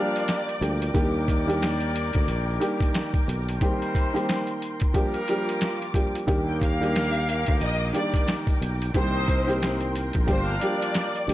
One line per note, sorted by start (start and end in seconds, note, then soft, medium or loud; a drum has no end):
0.00 0.58 F3 medium
0.00 0.58 G3 medium
0.00 0.58 A#3 medium
0.00 0.58 D4 medium
0.00 0.59 D4 medium
0.00 0.93 F4 medium
0.00 0.58 G4 loud
0.00 0.59 A#4 medium
0.00 6.24 A#4 medium
0.00 0.90 D5 medium
0.00 0.59 F5 loud
0.00 6.24 G5 medium
0.00 3.57 D6 medium
0.16 closed hi-hat medium
0.28 snare loud
0.28 closed hi-hat loud
0.49 closed hi-hat soft
0.61 0.90 D2 loud
0.61 0.92 F3 medium
0.61 0.92 G3 medium
0.61 0.92 A#3 medium
0.61 0.93 D4 medium
0.61 0.93 G4 medium
0.61 closed hi-hat medium
0.82 closed hi-hat medium
0.94 2.11 D#2 loud
0.94 1.43 D#3 loud
0.94 4.91 D#3 medium
0.94 1.43 G3 medium
0.94 3.24 A#3 medium
0.94 1.43 A#3 medium
0.94 1.43 D4 medium
0.94 3.24 G4 medium
0.94 1.43 G4 loud
0.94 3.23 D5 loud
0.94 kick loud
0.94 closed hi-hat medium
1.28 kick medium
1.28 closed hi-hat medium
1.47 2.38 D#3 medium
1.47 2.38 G3 medium
1.47 2.38 A#3 medium
1.47 2.38 D4 medium
1.47 2.38 G4 loud
1.47 closed hi-hat soft
1.62 snare loud
1.62 snare medium
1.62 closed hi-hat loud
1.80 closed hi-hat soft
1.96 closed hi-hat medium
2.13 2.27 D2 medium
2.13 kick loud
2.13 closed hi-hat medium
2.28 2.57 A#1 loud
2.28 closed hi-hat medium
2.60 3.54 D#3 loud
2.60 3.54 G3 medium
2.60 3.54 A#3 medium
2.60 3.55 D4 medium
2.60 3.55 G4 loud
2.60 closed hi-hat medium
2.80 kick loud
2.80 closed hi-hat medium
2.94 snare loud
2.94 closed hi-hat loud
3.14 kick loud
3.14 closed hi-hat soft
3.28 3.57 B1 loud
3.28 closed hi-hat medium
3.49 closed hi-hat medium
3.61 4.10 D#3 medium
3.61 4.59 G3 medium
3.61 4.10 G3 medium
3.61 4.10 A#3 medium
3.61 4.10 C4 medium
3.61 4.59 D#4 medium
3.61 4.10 G4 loud
3.61 4.59 C5 medium
3.61 4.93 C6 medium
3.61 kick loud
3.61 closed hi-hat medium
3.82 closed hi-hat soft
3.95 kick medium
3.95 closed hi-hat medium
4.14 4.94 D#3 medium
4.14 4.92 G3 medium
4.14 4.93 A#3 loud
4.14 4.95 C4 medium
4.14 4.93 G4 loud
4.14 closed hi-hat soft
4.29 snare loud
4.29 snare medium
4.29 closed hi-hat loud
4.47 closed hi-hat soft
4.62 closed hi-hat medium
4.80 kick loud
4.80 closed hi-hat medium
4.94 5.17 F3 medium
4.94 5.17 G3 medium
4.94 5.93 G3 medium
4.94 5.17 A#3 medium
4.94 5.17 D4 medium
4.94 6.26 F4 medium
4.94 5.92 F4 medium
4.94 5.17 G4 loud
4.94 5.93 A#4 loud
4.94 6.26 D6 medium
4.94 kick loud
4.94 closed hi-hat medium
5.14 closed hi-hat soft
5.28 5.91 F3 medium
5.28 5.91 G3 medium
5.28 5.91 A#3 medium
5.28 5.91 D4 medium
5.28 5.91 G4 loud
5.28 closed hi-hat medium
5.49 closed hi-hat medium
5.61 snare loud
5.61 closed hi-hat loud
5.82 closed hi-hat soft
5.94 6.25 F3 medium
5.94 6.25 G3 medium
5.94 6.26 A#3 medium
5.94 6.26 D4 medium
5.94 6.26 G4 medium
5.94 kick medium
5.94 closed hi-hat medium
6.15 closed hi-hat medium
6.27 7.44 D#2 loud
6.27 6.76 D#3 loud
6.27 10.24 D#3 medium
6.27 6.76 G3 medium
6.27 6.76 A#3 medium
6.27 8.57 A#3 loud
6.27 6.76 D4 medium
6.27 8.57 G4 medium
6.27 6.76 G4 loud
6.27 8.57 A#4 loud
6.27 11.34 A#4 medium
6.27 11.34 G5 medium
6.27 8.92 D6 medium
6.27 kick loud
6.27 closed hi-hat medium
6.48 6.60 G5 medium
6.61 7.57 F5 medium
6.61 kick medium
6.61 closed hi-hat medium
6.80 7.71 D#3 medium
6.80 7.71 G3 medium
6.80 7.71 A#3 medium
6.80 7.72 D4 medium
6.80 7.72 G4 loud
6.80 closed hi-hat soft
6.96 snare loud
6.96 snare medium
6.96 closed hi-hat medium
7.14 closed hi-hat soft
7.29 closed hi-hat medium
7.46 7.60 D2 medium
7.46 kick loud
7.46 closed hi-hat medium
7.61 7.90 A#1 loud
7.61 7.91 D#5 loud
7.61 closed hi-hat medium
7.93 8.87 D#3 medium
7.93 8.88 G3 medium
7.93 8.88 A#3 medium
7.93 8.88 D4 medium
7.93 8.88 G4 loud
7.93 8.24 D5 medium
7.93 closed hi-hat medium
8.14 kick loud
8.14 closed hi-hat medium
8.28 snare loud
8.28 closed hi-hat loud
8.47 kick loud
8.47 closed hi-hat soft
8.62 8.91 B1 loud
8.62 closed hi-hat medium
8.82 closed hi-hat medium
8.94 10.11 C2 loud
8.94 9.43 D#3 medium
8.94 9.43 G3 medium
8.94 9.43 A#3 medium
8.94 9.44 C4 medium
8.94 9.93 C4 medium
8.94 9.44 G4 loud
8.94 9.93 A#4 medium
8.94 9.77 C5 loud
8.94 9.93 D#5 medium
8.94 10.28 C6 medium
8.94 kick loud
8.94 closed hi-hat medium
9.28 kick medium
9.28 closed hi-hat medium
9.47 10.27 D#3 medium
9.47 10.26 G3 medium
9.47 10.26 A#3 medium
9.47 10.28 C4 medium
9.47 10.26 G4 loud
9.47 closed hi-hat soft
9.62 snare loud
9.62 snare medium
9.62 closed hi-hat loud
9.81 closed hi-hat soft
9.96 closed hi-hat medium
10.13 10.27 A#1 loud
10.13 kick loud
10.13 closed hi-hat medium
10.27 10.57 G1 loud
10.27 10.50 F3 loud
10.27 10.50 G3 medium
10.27 10.50 A#3 medium
10.27 10.50 D4 medium
10.27 11.26 D4 medium
10.27 11.34 F4 medium
10.27 10.50 G4 loud
10.27 11.26 A#4 medium
10.27 10.58 C5 medium
10.27 11.26 F5 loud
10.27 11.34 D6 medium
10.27 kick medium
10.27 closed hi-hat medium
10.61 11.24 F3 medium
10.61 11.24 G3 medium
10.61 11.24 A#3 medium
10.61 11.24 D4 medium
10.61 11.25 G4 medium
10.61 11.34 D5 medium
10.61 closed hi-hat medium
10.82 closed hi-hat medium
10.94 snare loud
10.94 closed hi-hat loud
11.16 closed hi-hat soft
11.27 11.34 D2 loud
11.27 11.34 F3 medium
11.27 11.34 G3 medium
11.27 11.34 A#3 medium
11.27 11.34 D4 medium
11.27 11.34 G4 medium
11.27 closed hi-hat medium